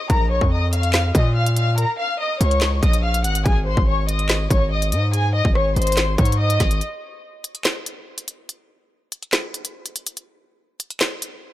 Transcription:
0.10 808-style bass A#1, violin section A#4 A#5, kick, closed hi-hat
0.31 violin section C#5 C#6
0.41 808-style bass F2, kick
0.52 violin section D#5 D#6
0.73 violin section F5 F6, closed hi-hat
0.83 closed hi-hat
0.94 snare, clap, closed hi-hat
1.15 808-style bass A#2, violin section D#5 D#6, kick, closed hi-hat
1.36 violin section F5 F6
1.46 closed hi-hat
1.56 violin section F5 F6, closed hi-hat
1.78 violin section A#4 A#5, closed hi-hat
1.99 violin section F5 F6
2.19 violin section D#5 D#6
2.40 808-style bass C#2, violin section C#5 C#6, closed hi-hat
2.51 closed hi-hat
2.61 snare, clap, closed hi-hat
2.82 808-style bass A#1, violin section D#5 D#6, kick, closed hi-hat
2.93 closed hi-hat
3.04 violin section F5 F6
3.14 closed hi-hat
3.24 808-style bass G#1, violin section F#5 F#6, closed hi-hat
3.35 closed hi-hat
3.45 808-style bass G#1, violin section G#4 G#5, kick, closed hi-hat
3.67 violin section C5 C6
3.77 808-style bass G#1, kick
3.88 violin section C#5 C#6
4.08 violin section D#5 D#6, closed hi-hat
4.19 closed hi-hat
4.29 snare, clap, closed hi-hat
4.50 808-style bass G#1, violin section C#5 C#6, kick, closed hi-hat
4.71 violin section D#5 D#6
4.82 closed hi-hat
4.92 808-style bass G#2, violin section D#5 D#6, closed hi-hat
5.13 violin section G#4 G#5, closed hi-hat
5.34 violin section D#5 D#6
5.45 808-style bass G#1, kick
5.55 violin section C#5 C#6, cross-stick
5.76 808-style bass G#1, violin section C5 C6, closed hi-hat
5.82 closed hi-hat
5.87 closed hi-hat
5.92 closed hi-hat
5.97 snare, clap, closed hi-hat
6.18 808-style bass G#2, violin section C#5 C#6, kick, closed hi-hat
6.25 closed hi-hat
6.32 closed hi-hat
6.39 violin section D#5 D#6
6.50 closed hi-hat
6.60 808-style bass G#1, kick, snare, closed hi-hat
6.71 closed hi-hat
6.81 closed hi-hat
7.44 closed hi-hat
7.55 closed hi-hat
7.65 snare, clap, closed hi-hat
7.86 closed hi-hat
8.18 closed hi-hat
8.28 closed hi-hat
8.49 closed hi-hat
9.12 closed hi-hat
9.23 closed hi-hat
9.33 snare, clap, closed hi-hat
9.54 closed hi-hat
9.65 closed hi-hat
9.86 closed hi-hat
9.96 closed hi-hat
10.07 closed hi-hat
10.17 closed hi-hat
10.80 closed hi-hat
10.90 closed hi-hat
11.01 snare, clap, closed hi-hat
11.22 closed hi-hat

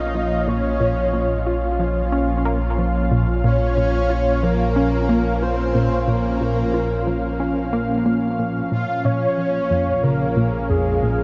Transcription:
Already playing: analog synth bass A#1, analog synth pad A#2 F3 C#4 D#4 F4 F5
0.00 soft synth lead D#5
0.15 synth arpeggio sound F3
0.48 synth arpeggio sound A#2, soft synth lead C#5
0.80 synth arpeggio sound A#2
1.14 synth arpeggio sound A#2
1.47 synth arpeggio sound F4
1.80 synth arpeggio sound F3
2.12 synth arpeggio sound C#4
2.45 synth arpeggio sound A#3
2.78 synth arpeggio sound F3
3.11 synth arpeggio sound A#2
3.44 synth arpeggio sound A#2, soft synth lead C#5
3.77 synth arpeggio sound A#2
4.10 synth arpeggio sound F4
4.43 synth arpeggio sound F3, soft synth lead A#4
4.76 synth arpeggio sound C#4
5.09 synth arpeggio sound A#3
5.42 synth arpeggio sound F3, soft synth lead C5
5.75 synth arpeggio sound A#2
6.08 synth arpeggio sound A#2, soft synth lead A#4
6.41 synth arpeggio sound A#2
6.74 synth arpeggio sound F4
7.07 synth arpeggio sound F3
7.40 synth arpeggio sound C#4
7.73 synth arpeggio sound A#3
8.06 synth arpeggio sound A#3
8.39 synth arpeggio sound A#2
8.72 analog synth bass A#1, synth arpeggio sound A#2, soft synth lead F5
9.05 synth arpeggio sound A#2, soft synth lead C#5
9.38 synth arpeggio sound F3
9.71 synth arpeggio sound F2
10.03 synth arpeggio sound C#3, soft synth lead A#4
10.10 analog synth pad G#4
10.37 synth arpeggio sound A#2
10.69 synth arpeggio sound F2, soft synth lead G#4
11.03 synth arpeggio sound A#2

